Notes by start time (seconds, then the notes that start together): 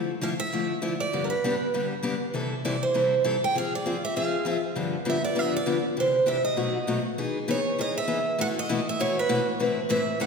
Already playing: D3 F3 A3 E4
0.21 D3 F3 A3 E4 F5
0.40 E5
0.53 D3 F3 A3 E4
0.82 D3 F3 A3 E4
1.00 D5
1.13 G2 D3 G3 B3 D4 G4
1.24 A#4
1.30 B4
1.44 G2 D3 G3 B3 D4 G4
1.74 G2 D3 G3 B3 D4 G4
2.03 G2 D3 G3 B3 D4 G4
2.34 C3 E3 G3 C4 E4 A4
2.65 C3 E3 G3 C4 E4 A4 D5
2.83 C5
2.94 C3 E3 G3 C4 E4 A4
3.24 C3 E3 G3 C4 E4 A4
3.44 G5
3.55 F3 C4 F4 G#4 F5
3.75 D5
3.86 F3 C4 F4 G#4
4.05 E5
4.16 F3 C4 F4 G#4 F5
4.45 F3 C4 F4 G#4
4.50 E5
4.76 G2 D3 F3 B3 D4 G4
5.05 G2 D3 F3 B3 D4 G4
5.10 E5
5.24 D5
5.35 G2 D3 F3 B3 D4 G4 E5
5.57 D5
5.66 G2 D3 F3 B3 D4 G4
5.97 C3 E3 D4 G4 C5
6.26 C3 E3 D4 G4 E5
6.45 D#5
6.57 B2 F#3 A3 D#4 F#4
6.87 B2 F#3 A3 D#4 F#4
7.18 E3 B3 D#4 G#4
7.48 E3 B3 D#4 G#4 C#5
7.78 E3 B3 D#4 G#4 D#5
7.98 E5
8.07 E3 B3 D#4 G#4
8.38 B2 E3 A3 E4 F#4 F#5
8.59 D#5
8.69 B2 E3 A3 E4 F#4
8.89 E5
9.00 B2 E3 A3 E4 F#4 C#5
9.19 B4
9.29 B2 E3 A3 E4 F#4
9.59 A2 E3 A3 C4 E4 B4
9.89 A2 E3 A3 C4 E4 B4 E5
10.20 A2 E3 A3 C4 E4 B4 F#5